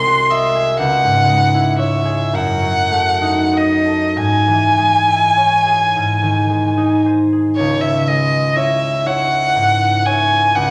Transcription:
0.00 0.83 C2 soft
0.00 0.83 C3 soft
0.00 1.28 G#3 soft
0.00 0.32 C6 medium
0.07 0.83 F#4 soft
0.30 0.83 D#5 soft
0.30 0.79 E5 medium
0.55 2.04 G#4 soft
0.78 2.39 C#2 soft
0.78 1.79 F#5 medium
1.04 2.39 G#2 soft
1.29 2.39 G#3 soft
1.54 2.39 E4 soft
1.79 2.38 C#5 soft
1.79 2.37 E5 medium
2.05 2.38 G#4 soft
2.33 4.22 F#2 soft
2.33 3.58 F#5 medium
2.62 4.22 F#3 soft
2.90 4.21 A3 soft
3.22 4.21 D#4 soft
3.53 4.22 D#5 soft
3.53 4.19 D#5 medium
3.85 4.21 A4 soft
4.16 5.95 G#2 soft
4.16 7.04 G#5 medium
4.47 5.98 E3 soft
4.78 6.48 G#3 soft
5.08 5.98 E4 soft
5.37 5.98 C#5 soft
5.66 7.32 G#4 soft
5.96 7.61 G#2 soft
6.22 7.61 D#3 soft
6.50 8.08 G#3 soft
6.77 7.61 D#4 soft
7.06 7.61 C5 soft
7.33 10.59 G#4 soft
7.56 10.55 C#2 soft
7.56 7.83 C#5 medium
7.81 8.09 E5 medium
8.08 10.60 G#3 soft
8.08 8.58 D#5 medium
8.56 9.05 E4 soft
8.56 9.05 C#5 soft
8.56 9.08 E5 medium
9.06 10.05 E4 soft
9.06 10.05 C#5 soft
9.06 10.07 F#5 medium
9.56 10.59 G#2 soft
10.06 10.71 E4 soft
10.06 10.71 C#5 soft
10.06 10.57 G#5 medium
10.56 10.71 C#2 soft
10.56 10.71 F#5 medium

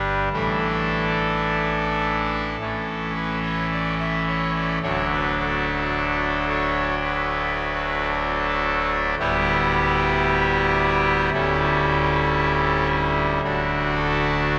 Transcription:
0.00 0.29 G1 soft
0.00 0.29 G2 medium
0.00 0.29 G3 soft
0.00 0.29 D4 soft
0.00 0.24 B4 medium
0.33 2.57 A1 soft
0.33 2.56 A2 medium
0.33 2.57 E3 soft
0.33 2.56 A3 soft
0.33 2.57 D4 soft
0.33 3.12 A4 medium
2.60 4.79 A1 soft
2.60 4.79 A2 soft
2.60 4.79 E3 soft
2.60 4.79 A3 soft
2.60 4.79 C#4 soft
3.16 3.39 B4 medium
3.43 3.67 C#5 medium
3.72 3.95 D5 medium
4.00 4.23 E5 medium
4.28 4.51 C#5 medium
4.55 4.79 D5 medium
4.83 9.15 D1 medium
4.83 9.15 D2 medium
4.83 9.15 F#3 soft
4.83 9.15 A3 soft
4.83 9.15 D4 soft
4.83 5.06 C#5 medium
5.12 5.35 B4 medium
5.39 6.45 A4 medium
6.49 6.95 C#5 medium
7.04 8.08 B4 medium
8.10 9.15 A4 medium
9.19 11.30 D1 medium
9.19 11.30 D2 medium
9.19 11.30 G3 soft
9.19 11.30 B3 soft
9.19 11.30 E4 soft
9.19 11.30 G4 loud
11.33 13.40 D1 medium
11.33 13.41 D2 soft
11.33 13.41 G3 soft
11.33 13.41 C#4 soft
11.33 13.41 E4 soft
11.33 12.88 A4 medium
13.44 14.59 D1 medium
13.44 14.59 D2 medium
13.44 14.59 A3 soft
13.44 14.59 D4 medium
13.44 14.59 F#4 medium
13.96 14.59 A4 loud

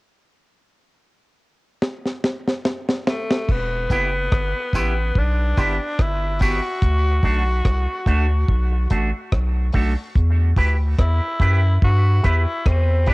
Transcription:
1.82 snare medium
2.06 snare soft
2.24 snare medium
2.48 snare medium
2.65 snare medium
2.89 snare medium
3.07 3.53 A3 medium
3.07 snare loud
3.31 snare medium
3.49 3.87 E1 loud
3.49 3.91 B3 loud
3.49 kick loud
3.49 crash medium
3.90 4.28 F#1 medium
3.90 4.09 B3 medium
3.90 5.20 B3 loud
3.90 4.09 E4 medium
3.90 4.10 G4 loud
3.90 kick medium
3.90 closed hi-hat medium
3.90 tambourine soft
4.32 4.54 G1 loud
4.32 kick loud
4.32 cross-stick loud
4.73 5.12 A1 medium
4.73 4.93 B3 medium
4.73 4.93 E4 medium
4.73 4.93 G4 medium
4.73 kick medium
4.73 closed hi-hat medium
4.73 tambourine medium
4.73 high woodblock medium
5.15 5.54 B1 loud
5.15 6.03 D4 loud
5.15 kick loud
5.57 5.79 G1 medium
5.57 5.76 B3 medium
5.57 5.76 E4 medium
5.57 5.76 G4 medium
5.57 kick medium
5.57 cross-stick medium
5.57 open hi-hat soft
5.57 tambourine medium
5.57 high woodblock medium
5.99 6.60 G1 medium
5.99 6.43 E4 loud
5.99 kick loud
5.99 cross-stick loud
5.99 hi-hat pedal medium
6.39 6.59 B3 medium
6.39 6.59 E4 medium
6.39 8.91 F#4 loud
6.39 6.60 G4 medium
6.39 kick medium
6.39 open hi-hat medium
6.39 tambourine medium
6.82 7.21 D2 loud
6.82 kick loud
6.82 hi-hat pedal medium
7.23 7.62 B1 medium
7.23 7.42 A3 medium
7.23 7.42 D4 medium
7.23 7.43 F#4 medium
7.23 kick medium
7.23 open hi-hat soft
7.65 7.87 C2 medium
7.65 kick loud
7.65 cross-stick loud
7.65 hi-hat pedal medium
8.06 8.45 D2 loud
8.06 8.25 A3 medium
8.06 8.26 D4 medium
8.06 8.26 F#4 loud
8.06 kick medium
8.06 closed hi-hat medium
8.49 8.87 B1 loud
8.49 kick loud
8.72 muted clean electric guitar stroke soft
8.90 9.12 A1 medium
8.90 9.09 A3 medium
8.90 9.09 D4 medium
8.90 9.10 F#4 medium
8.90 kick medium
8.90 closed hi-hat medium
9.32 9.71 B1 loud
9.32 kick loud
9.32 cross-stick loud
9.72 9.96 B1 medium
9.72 9.92 A3 medium
9.72 9.93 D4 medium
9.72 9.93 F#4 medium
9.72 kick medium
9.72 open hi-hat medium
10.15 10.54 E2 loud
10.15 kick loud
10.15 hi-hat pedal medium
10.57 10.95 D2 medium
10.57 10.76 E4 medium
10.57 10.76 G4 medium
10.57 10.76 B4 medium
10.57 kick medium
10.57 open hi-hat medium
10.99 11.20 E2 medium
10.99 11.79 E4 loud
10.99 kick loud
10.99 cross-stick loud
10.99 hi-hat pedal medium
11.40 11.78 F#2 loud
11.40 11.59 E4 medium
11.40 11.59 G4 medium
11.40 11.60 B4 loud
11.40 kick medium
11.40 closed hi-hat medium
11.82 12.21 G2 loud
11.82 12.28 F#4 loud
11.82 kick loud
12.23 12.46 E2 medium
12.23 12.42 E4 medium
12.23 12.69 E4 loud
12.23 12.42 G4 medium
12.23 12.43 B4 medium
12.23 kick medium
12.23 cross-stick medium
12.23 closed hi-hat medium
12.66 13.14 E2 medium
12.66 13.11 C4 medium
12.66 kick loud
12.66 cross-stick loud
13.06 13.14 D4 loud
13.06 13.14 E4 medium
13.06 13.14 G4 medium
13.06 13.14 B4 medium
13.06 kick medium
13.06 open hi-hat medium

